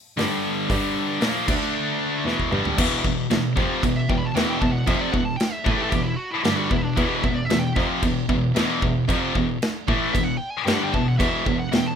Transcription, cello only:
0.18 0.26 G2 medium
0.70 0.78 G2 loud
1.21 1.29 A#2 medium
1.48 1.56 D2 medium
2.25 2.33 E2 medium
2.51 2.59 G2 loud
2.78 2.86 E2 loud
3.05 3.13 E2 medium
3.31 3.39 E2 medium
3.57 3.65 F2 medium
3.83 3.91 E2 medium
4.09 4.17 E2 medium
4.35 4.43 E2 medium
4.62 4.70 E2 medium
4.88 4.96 F2 loud
5.14 5.22 E2 medium
5.66 5.74 A2 medium
5.92 6.00 E2 medium
6.46 6.54 G2 medium
6.71 6.79 E2 medium
6.97 7.05 E2 loud
7.24 7.32 E2 medium
7.50 7.58 E2 medium
7.76 7.84 F2 loud
8.02 8.10 E2 medium
8.29 8.37 E2 medium
8.55 8.63 E2 medium
8.82 8.90 E2 medium
9.08 9.16 F2 loud
9.35 9.43 E2 medium
9.88 9.96 A2 medium
10.14 10.22 E2 medium
10.66 10.74 G2 medium
10.94 11.02 E2 medium
11.20 11.28 E2 loud
11.47 11.55 E2 medium
11.72 11.80 E2 medium

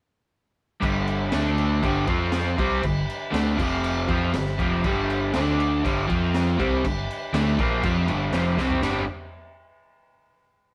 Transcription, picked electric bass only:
0.82 1.29 G1 medium
1.33 1.80 D2 medium
1.83 2.07 G1 loud
2.07 2.55 F2 medium
2.58 2.82 C2 loud
2.84 3.07 G1 medium
3.33 3.57 D2 medium
3.59 4.06 F1 loud
4.09 4.33 F2 loud
4.34 4.58 G1 medium
4.59 4.83 F1 loud
4.84 5.31 G1 loud
5.35 5.81 D2 medium
5.84 6.08 G1 loud
6.09 6.56 F2 loud
6.59 6.83 C2 loud
6.84 7.08 G1 medium
7.33 7.57 D2 loud
7.59 7.82 A#1 loud
7.84 8.07 F2 medium
8.08 8.31 G1 medium
8.32 8.56 F1 medium
8.57 8.81 C2 loud
8.82 9.05 G1 medium

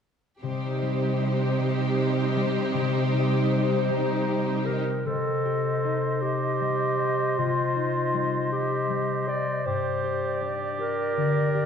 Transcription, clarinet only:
3.88 4.67 D#4 medium
4.66 5.08 A#4 soft
5.06 6.23 A4 soft
6.22 7.40 G4 soft
7.38 8.51 F4 soft
8.52 9.29 G4 medium
9.28 9.67 D5 soft
9.66 10.51 C5 soft
10.79 11.66 A#4 medium

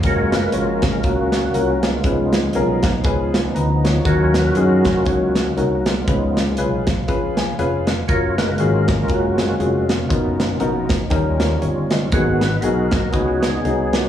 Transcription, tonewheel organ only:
0.05 0.82 G#3 soft
0.05 0.82 A#3 soft
0.05 0.52 F4 medium
0.05 0.53 A#4 medium
0.05 0.35 C#5 loud
0.33 0.55 B4 medium
0.54 1.02 C#4 medium
0.54 0.83 F4 medium
0.54 1.06 A#4 medium
0.83 1.02 G#3 soft
0.83 1.02 A#3 soft
0.83 1.03 F4 medium
1.03 2.00 A#3 medium
1.03 2.00 C#4 medium
1.03 1.79 F#4 medium
1.84 2.80 G#3 soft
1.84 2.04 B3 medium
1.84 2.81 F4 medium
2.04 4.01 F3 soft
2.04 4.02 B3 soft
2.04 4.02 D#4 medium
4.05 5.33 F#3 soft
4.05 4.56 C#4 soft
4.05 5.34 F4 medium
4.05 4.57 F#4 medium
4.05 4.58 A#4 medium
4.05 4.33 C#5 loud
4.35 4.57 B4 medium
4.57 5.05 C#4 medium
4.57 5.05 F#4 medium
4.57 5.04 A#4 medium
5.06 6.03 A#3 medium
5.06 5.34 C#4 medium
5.06 5.88 F#4 medium
5.34 5.54 F#3 medium
5.34 5.54 C#4 soft
5.34 5.54 F4 medium
5.87 6.83 G#3 medium
5.87 6.06 B3 medium
5.87 6.83 F4 medium
6.07 6.43 F3 soft
6.07 6.43 B3 soft
6.07 6.43 D#4 medium
8.08 8.37 F4 medium
8.08 8.56 A#4 medium
8.08 8.35 C#5 medium
8.37 9.58 G#3 medium
8.37 9.08 A#3 soft
8.37 8.56 F4 medium
8.37 8.60 B4 medium
8.57 9.09 C#4 medium
8.57 9.55 F4 medium
8.57 9.10 A#4 medium
9.09 9.57 A#3 medium
9.09 10.07 C#4 medium
9.09 9.85 F#4 medium
9.58 9.86 G#3 soft
9.58 9.86 A#3 soft
9.58 9.86 F4 medium
9.90 10.86 B2 medium
9.90 10.08 A#3 medium
9.90 10.87 F4 medium
10.09 10.86 A#3 medium
10.09 10.86 C#4 soft
10.09 10.86 D#4 medium
11.12 12.09 G3 medium
11.12 12.09 C#4 medium
11.12 12.09 F4 medium
12.12 12.48 A#3 medium
12.12 12.49 B3 soft
12.12 12.49 F#4 medium
12.12 12.27 C#5 loud
12.41 12.63 B4 loud
12.61 13.09 D#4 medium
12.61 13.09 F#4 medium
12.61 13.14 A#4 medium
13.12 14.09 B3 medium
13.12 14.09 D#4 medium
13.12 13.49 F#4 medium
13.12 13.95 G#4 loud
13.92 14.09 A#3 soft
13.92 14.09 C#4 soft
13.92 14.09 F#4 medium

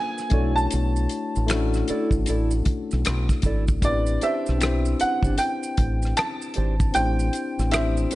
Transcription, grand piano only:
0.00 0.57 G#5 medium
0.56 3.00 A5 medium
3.85 4.24 D5 medium
4.23 4.96 E5 medium
5.01 5.36 F#5 medium
5.38 6.12 G5 medium
6.17 6.97 A5 medium
6.95 7.75 G5 loud
7.72 8.15 E5 medium

